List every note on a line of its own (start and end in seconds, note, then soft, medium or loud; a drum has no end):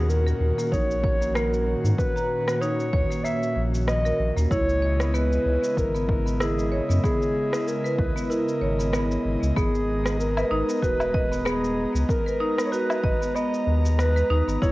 0.00 0.33 D#2 loud
0.00 4.47 A#2 medium
0.00 4.47 D#3 medium
0.00 4.47 C#4 medium
0.00 4.47 F#4 medium
0.00 0.11 G#4 medium
0.09 0.73 A#4 medium
0.09 shaker medium
0.27 0.56 A#4 medium
0.27 shaker soft
0.40 0.52 D#2 medium
0.58 0.71 A#3 medium
0.58 shaker medium
0.72 1.75 A#1 medium
0.72 1.02 D#4 medium
0.72 1.36 C#5 loud
0.72 kick medium
0.72 shaker soft
0.91 shaker soft
1.04 1.20 C#5 medium
1.04 kick loud
1.21 1.29 A#3 medium
1.21 shaker medium
1.35 1.97 A#3 medium
1.35 1.84 A#4 medium
1.35 cross-stick medium
1.35 shaker medium
1.54 shaker soft
1.84 1.94 G#2 loud
1.84 shaker medium
1.98 2.63 B4 loud
1.98 kick loud
1.98 shaker medium
2.16 2.46 A#5 medium
2.16 shaker soft
2.48 2.60 A#3 medium
2.48 cross-stick medium
2.48 shaker medium
2.61 2.92 D#4 medium
2.61 3.26 C#5 loud
2.61 shaker medium
2.80 shaker soft
2.93 3.05 D#2 medium
2.93 3.09 C#5 medium
2.93 kick loud
3.11 3.19 A#3 medium
3.11 shaker medium
3.24 3.87 A#3 medium
3.24 3.61 E5 loud
3.24 shaker medium
3.43 shaker soft
3.56 4.12 A#1 loud
3.75 shaker medium
3.88 4.33 D#5 loud
3.88 cross-stick medium
3.88 shaker medium
4.05 4.35 A#4 medium
4.05 shaker soft
4.19 4.31 A#1 loud
4.37 4.46 D#2 loud
4.37 4.50 A#3 medium
4.37 shaker medium
4.51 5.38 C#2 loud
4.51 9.52 C#3 medium
4.51 14.58 G#3 medium
4.51 9.52 E4 medium
4.51 4.81 E4 medium
4.51 5.16 C#5 loud
4.51 14.58 D#5 medium
4.51 kick loud
4.51 shaker medium
4.69 shaker soft
4.82 4.98 C#5 medium
5.00 5.08 B3 medium
5.00 cross-stick medium
5.00 shaker medium
5.14 5.76 B3 loud
5.14 5.79 B4 medium
5.14 shaker medium
5.33 shaker soft
5.46 5.57 C#2 medium
5.64 shaker medium
5.77 6.80 G#1 medium
5.77 6.42 A#4 medium
5.77 kick medium
5.77 shaker medium
5.95 6.25 B3 medium
5.95 shaker soft
6.09 kick loud
6.26 6.39 B3 medium
6.26 shaker medium
6.40 6.71 E4 medium
6.40 6.90 G#4 medium
6.40 cross-stick medium
6.40 shaker medium
6.59 shaker soft
6.72 6.88 C#5 medium
6.89 6.99 F#2 loud
6.89 6.97 B3 medium
6.89 shaker medium
7.03 7.65 B3 loud
7.03 7.69 G#4 loud
7.03 kick loud
7.03 shaker medium
7.22 shaker soft
7.53 cross-stick medium
7.53 shaker medium
7.67 8.00 A#4 medium
7.67 shaker medium
7.84 8.14 B4 medium
7.84 shaker soft
7.98 8.10 C#2 medium
7.98 8.32 B4 medium
7.98 kick medium
8.16 8.29 B3 medium
8.16 shaker medium
8.30 8.60 E4 medium
8.30 9.25 A#4 medium
8.30 shaker soft
8.49 shaker soft
8.62 9.17 G#1 medium
8.62 8.77 C#5 medium
8.79 8.87 B3 medium
8.79 shaker medium
8.93 9.55 B3 loud
8.93 cross-stick medium
8.93 shaker medium
9.12 shaker soft
9.25 9.37 G#1 loud
9.43 9.52 C#2 loud
9.43 shaker medium
9.56 10.44 G#1 loud
9.56 10.18 B3 loud
9.56 14.58 B3 medium
9.56 10.16 G#4 medium
9.56 14.72 A#5 medium
9.56 kick loud
9.56 shaker soft
9.75 shaker soft
10.06 cross-stick medium
10.06 shaker medium
10.19 10.79 A#4 medium
10.19 shaker soft
10.37 10.50 B4 medium
10.37 low woodblock medium
10.37 shaker soft
10.51 10.63 G#1 medium
10.51 10.68 D#4 loud
10.69 10.81 B3 medium
10.69 shaker medium
10.83 11.86 D#1 medium
10.83 11.13 F#4 medium
10.83 11.47 B4 medium
10.83 kick medium
10.83 shaker medium
11.00 low woodblock medium
11.00 shaker soft
11.14 11.30 D#5 medium
11.14 kick loud
11.32 11.40 B3 medium
11.32 shaker medium
11.46 12.08 B3 loud
11.46 11.95 G#4 medium
11.46 cross-stick medium
11.46 shaker medium
11.64 shaker soft
11.95 12.04 C#2 loud
11.95 shaker medium
12.09 12.62 A#4 loud
12.09 kick loud
12.09 shaker medium
12.26 12.39 B4 medium
12.26 shaker soft
12.40 12.57 D#4 loud
12.58 12.71 B3 medium
12.58 cross-stick medium
12.58 shaker medium
12.66 12.74 C#5 medium
12.72 13.02 F#4 medium
12.72 13.37 B4 medium
12.72 shaker soft
12.90 low woodblock medium
12.90 shaker soft
13.04 13.16 G#1 medium
13.04 13.20 D#5 medium
13.04 kick loud
13.21 13.29 B3 medium
13.21 shaker medium
13.35 13.97 B3 loud
13.35 13.72 D#5 loud
13.35 shaker soft
13.54 shaker soft
13.67 14.23 D#2 medium
13.86 shaker medium
13.99 14.44 B4 loud
13.99 cross-stick medium
13.99 shaker medium
14.16 14.29 B4 medium
14.16 shaker soft
14.30 14.42 D#2 loud
14.30 14.47 D#4 medium
14.47 14.57 G#1 loud
14.47 14.60 B3 medium
14.47 shaker medium
14.62 14.72 F#1 loud
14.62 14.72 F#3 medium
14.62 14.72 C#4 medium
14.62 14.72 E4 medium
14.62 14.72 G#4 medium
14.62 14.72 C#5 loud
14.62 kick loud
14.62 shaker soft